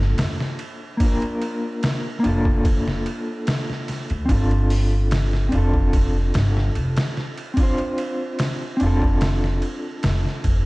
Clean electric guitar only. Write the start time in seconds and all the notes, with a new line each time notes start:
Already playing: A#3 D4 F4 A4
0.97 A#3 D4
1.03 F4 A#4
2.20 A#3 D4
2.26 F4 A4
4.25 C4 D4
4.31 F4
5.49 C4 D4
5.54 F4 A4
7.54 C4 D4
7.60 F4 C5
8.77 C4 D4
8.83 F4 A4